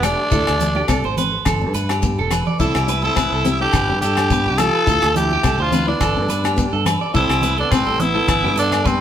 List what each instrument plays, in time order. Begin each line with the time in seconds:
Already playing: fingered electric bass E1
0.02 trombone A3, nylon-string guitar D4, tenor saxophone D4, clean electric guitar G4, cross-stick, closed hi-hat, low conga, low agogo, shekere
0.31 fingered electric bass D2, nylon-string guitar E4, clean electric guitar A4, kick, shekere
0.47 fingered electric bass D2, cross-stick, low agogo
0.60 nylon-string guitar D4, closed hi-hat, low conga, shekere
0.75 clean electric guitar G4, high conga
0.88 fingered electric bass C2, nylon-string guitar C4, clean electric guitar A4, kick, cross-stick, low agogo, shekere
1.04 fingered electric bass G#1, clean electric guitar C5, high conga
1.17 nylon-string guitar C4, clean electric guitar B4, closed hi-hat, low conga, shekere
1.45 fingered electric bass G1, clean electric guitar A4, kick, cross-stick, low conga, low agogo, shekere
1.61 fingered electric bass G2, nylon-string guitar D4
1.74 fingered electric bass G2, clean electric guitar B4, closed hi-hat, high conga, shekere
1.89 clean electric guitar G4, cross-stick, high conga, low agogo
2.03 nylon-string guitar B3, kick, high conga, shekere
2.19 fingered electric bass E1, clean electric guitar A4, high conga
2.31 nylon-string guitar D4, clean electric guitar B4, cross-stick, closed hi-hat, low conga, low agogo, shekere
2.47 clean electric guitar D5, low conga
2.60 fingered electric bass C2, trombone C4, tenor saxophone E4, nylon-string guitar E4, clean electric guitar A4, kick, shekere
2.75 fingered electric bass C2, clean electric guitar G4, cross-stick, low agogo
2.88 nylon-string guitar D4, clean electric guitar B4, closed hi-hat, shekere
3.03 trombone C4, tenor saxophone E4, clean electric guitar A4, high conga
3.16 fingered electric bass A1, nylon-string guitar C4, clean electric guitar B4, kick, cross-stick, low agogo, shekere
3.33 fingered electric bass C2, clean electric guitar A4
3.45 nylon-string guitar C4, clean electric guitar G4, closed hi-hat, low conga, shekere
3.61 trombone D4, nylon-string guitar E4, tenor saxophone G4, clean electric guitar A4
3.73 fingered electric bass G1, clean electric guitar B4, kick, cross-stick, low conga, low agogo, shekere
3.89 fingered electric bass G2, nylon-string guitar D4, clean electric guitar G4
4.01 fingered electric bass G2, trombone D4, tenor saxophone G4, clean electric guitar A4, closed hi-hat, high conga, shekere
4.17 cross-stick, high conga, low agogo
4.30 nylon-string guitar B3, clean electric guitar B4, kick, shekere
4.46 fingered electric bass C2, clean electric guitar G4
4.58 nylon-string guitar D4, trombone F4, clean electric guitar G4, tenor saxophone A4, cross-stick, closed hi-hat, low conga, low agogo, shekere
4.75 clean electric guitar B4
4.87 fingered electric bass D2, nylon-string guitar E4, clean electric guitar A4, kick, shekere
5.02 fingered electric bass D2, cross-stick, low agogo
5.15 nylon-string guitar D4, trombone E4, tenor saxophone G4, closed hi-hat, low conga, shekere
5.30 clean electric guitar G4, high conga
5.43 fingered electric bass C2, nylon-string guitar C4, clean electric guitar A4, kick, cross-stick, low agogo, shekere
5.58 fingered electric bass D2, trombone D4, tenor saxophone F4, clean electric guitar C5, high conga
5.72 nylon-string guitar C4, clean electric guitar B4, closed hi-hat, low conga, shekere
5.87 trombone B3, tenor saxophone D4, nylon-string guitar E4
6.00 fingered electric bass G1, clean electric guitar A4, kick, cross-stick, low conga, low agogo, shekere
6.16 fingered electric bass G2, nylon-string guitar D4
6.29 fingered electric bass G2, clean electric guitar B4, closed hi-hat, high conga, shekere
6.44 clean electric guitar G4, cross-stick, high conga, low agogo
6.56 nylon-string guitar B3, kick, shekere
6.73 fingered electric bass G2, clean electric guitar A4
6.85 nylon-string guitar D4, clean electric guitar B4, cross-stick, closed hi-hat, low conga, low agogo, shekere
7.01 clean electric guitar D5
7.14 fingered electric bass C2, trombone C4, nylon-string guitar E4, tenor saxophone E4, clean electric guitar A4, kick, shekere
7.29 fingered electric bass C2, clean electric guitar G4, cross-stick, low agogo
7.42 nylon-string guitar D4, clean electric guitar B4, closed hi-hat, low conga, shekere
7.57 trombone B3, tenor saxophone D4, clean electric guitar A4, high conga
7.71 fingered electric bass A1, trombone G3, tenor saxophone C4, nylon-string guitar C4, clean electric guitar B4, kick, cross-stick, low agogo, shekere
7.86 fingered electric bass A1, clean electric guitar A4, high conga
8.00 trombone B3, nylon-string guitar C4, tenor saxophone E4, closed hi-hat, low conga, shekere
8.15 nylon-string guitar E4, clean electric guitar A4
8.27 fingered electric bass G1, clean electric guitar B4, kick, cross-stick, low conga, low agogo, shekere
8.43 fingered electric bass G2, nylon-string guitar D4, clean electric guitar G4
8.56 fingered electric bass G2, trombone B3, tenor saxophone D4, clean electric guitar A4, closed hi-hat, high conga, shekere
8.72 cross-stick, high conga, low agogo
8.85 trombone G3, nylon-string guitar B3, tenor saxophone C4, clean electric guitar B4, kick, shekere